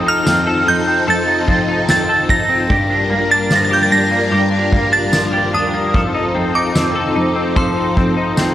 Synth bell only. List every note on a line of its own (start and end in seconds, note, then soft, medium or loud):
0.00 0.11 D#6 medium
0.08 0.70 F6 loud
0.68 1.06 G6 loud
1.10 1.89 A6 loud
1.90 2.31 A6 loud
2.30 3.34 A#6 loud
3.31 3.54 A6 loud
3.56 3.64 A#6 medium
3.65 3.74 A6 medium
3.73 3.82 G6 medium
3.83 3.92 A6 loud
3.92 4.96 A#6 loud
4.93 5.55 A6 loud
5.54 6.58 D#6 medium
6.55 7.60 D6 medium
7.57 8.54 C6 medium